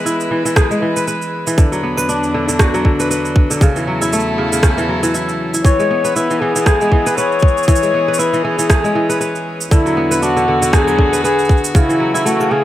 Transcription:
Already playing: kora E3 G#3 B3 B4, string quartet G#3 E4 B4
0.06 kora E4, cabasa
0.20 cabasa
0.31 kora E3
0.45 kora E3, cabasa
0.56 kora G#4, kick, cross-stick, cabasa
0.71 kora G#3, cabasa
0.82 kora E3
0.96 kora B4, cabasa
1.08 kora B4, cabasa
1.22 cabasa
1.47 kora E3, cabasa
1.58 string quartet E2 F#3 D4, kora D3, kick, cabasa
1.72 kora F#3, cabasa
1.83 kora B3
1.97 kora B4, cabasa
2.09 kora D4, cabasa
2.23 cabasa
2.34 kora D3
2.48 kora D3, cabasa
2.59 kora F#4, kick, cross-stick, cabasa
2.74 kora F#3, cabasa
2.85 kora D3, kick
3.00 kora B4, cabasa
3.11 kora B4, cabasa
3.25 cabasa
3.36 kick
3.51 kora D3, cabasa
3.61 string quartet E2 E4 A4, kora C#3, kick, cabasa
3.76 kora E3, cabasa
3.87 kora F#3
4.01 kora E4, cabasa
4.13 kora A3, cabasa
4.38 kora C#3
4.52 kora C#3, cabasa
4.63 kora C#4, kick, cross-stick, cabasa
4.78 kora E3, cabasa
4.89 kora F#3
5.03 kora E3, cabasa
5.14 kora E4, cabasa
5.29 cabasa
5.54 kora E4, cabasa
5.65 string quartet E3 B3 G#4, kora E3, flugelhorn C#5, kick, cabasa
5.79 kora G#3, cabasa
5.90 kora B3
6.05 kora B4, cabasa
6.15 kora E4, flugelhorn B4, cabasa
6.30 kora E3, cabasa
6.41 kora E3, flugelhorn G#4
6.56 kora E3, cabasa
6.66 kora G#4, kick, cross-stick, cabasa
6.81 kora G#3, cabasa
6.92 kora E3, kick
7.06 kora B4, cabasa
7.17 kora B4, flugelhorn C#5, cabasa
7.32 cabasa
7.39 kick, cabasa
7.48 cabasa
7.57 cabasa
7.63 cabasa
7.68 kora E3, string quartet C#4, flugelhorn C#5, kick, cabasa
7.75 cabasa
7.83 kora G#3, cabasa
7.94 kora B3
8.08 kora B4
8.14 cabasa
8.18 kora E4, flugelhorn B4, cabasa
8.33 kora E3, cabasa
8.44 kora E3, flugelhorn G#4
8.59 kora E3, cabasa
8.70 kora G#4, kick, cross-stick, cabasa
8.84 kora G#3, cabasa
8.95 kora E3
9.10 kora B4, cabasa
9.21 kora B4, cabasa
9.35 cabasa
9.61 cabasa
9.71 string quartet E2 D3 B3 F#4, kora D3, flugelhorn E4, kick, cabasa
9.86 kora F#3, cabasa
9.97 kora B3
10.11 kora B4, cabasa
10.22 kora D4, flugelhorn F#4, cabasa
10.37 kora D3, cabasa
10.48 kora D3
10.62 kora D3, cabasa
10.73 kora F#4, flugelhorn G#4, kick, cross-stick, cabasa
10.87 kora F#3, cabasa
10.98 kora D3, kick
11.13 kora B4, cabasa
11.24 flugelhorn G#4, kora B4, cabasa
11.39 cabasa
11.45 cabasa
11.49 kick, cabasa
11.57 cabasa
11.64 cabasa
11.74 kora C#3, string quartet E3 A3, flugelhorn E4, kick, cabasa
11.89 kora E3, cabasa
12.00 kora F#3
12.14 kora E4, cabasa
12.25 kora A3, flugelhorn F#4, cabasa
12.40 kora C#3, cabasa
12.51 kora C#3, flugelhorn G#4

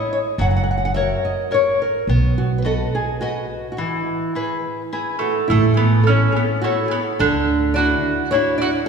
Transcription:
Already playing: nylon-string guitar E4 A4 C#5
0.13 nylon-string guitar C#5
0.38 upright bass F#1, nylon-string guitar F#3 F#5
0.51 nylon-string guitar F#5
0.56 nylon-string guitar F#5
0.64 nylon-string guitar F#5
0.71 nylon-string guitar F#5
0.78 nylon-string guitar F#5
0.85 nylon-string guitar F#5
0.94 nylon-string guitar F#4 A#4 C#5 E5
1.25 nylon-string guitar D#5
1.51 nylon-string guitar F#4 A#4 C#5
1.82 nylon-string guitar A#4
2.07 upright bass B1, nylon-string guitar B3
2.38 nylon-string guitar F#4
2.58 nylon-string guitar B4
2.65 nylon-string guitar F#4 A4 B4 D#5
2.95 nylon-string guitar G#4
3.21 nylon-string guitar F#4 B4 D#5
3.72 nylon-string guitar F#4
3.77 nylon-string guitar E3 E4
4.35 nylon-string guitar E4 G#4 B4
4.93 nylon-string guitar E4 G#4 B4
5.19 mandolin A3, nylon-string guitar F#4
5.48 upright bass A1, mandolin A3, nylon-string guitar A3 E4
5.74 mandolin B3, nylon-string guitar G#4
6.04 mandolin C#4, nylon-string guitar A4
6.08 nylon-string guitar E4 A4 C#5
6.32 nylon-string guitar G#4
6.36 mandolin B3
6.62 mandolin A3, nylon-string guitar E4 F#4 A4 C#5
6.88 mandolin B3, nylon-string guitar G#4
7.19 upright bass D2, nylon-string guitar D3 A4, mandolin D4
7.74 nylon-string guitar D4 E4 D5, mandolin F#4
7.78 nylon-string guitar F#4
8.31 nylon-string guitar D4 E4 C#5, mandolin E4
8.35 nylon-string guitar F#4
8.58 mandolin F#4, nylon-string guitar D5

